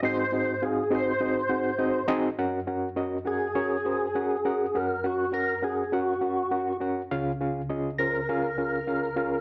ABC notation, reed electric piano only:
X:1
M:4/4
L:1/8
Q:1/4=102
K:Gblyd
V:1 name="Reed electric piano"
[CEGAe] [CEGAe] [CEGAf] [CEGAe] [CEGAe] [CEGAg] [CEGAe] [CEGAe] | [DGBg] [DGBg] [DGBe] [DGBg] [DGBd] [DGBc] [DGBg] [DGBg] | [DGBg] [DGBg] [DGBg] [DGBg] [DGBg] [DGBg] [DGBg] [DGBg] | [DFAf] [DFAf] [DFAe] [DFAc] [DFAf] [DFAf] [DFAf] [DFAf] |]
V:2 name="Reed electric piano" clef=bass
A,,8 | G,,8 | G,,8 | [D,,D,]8 |]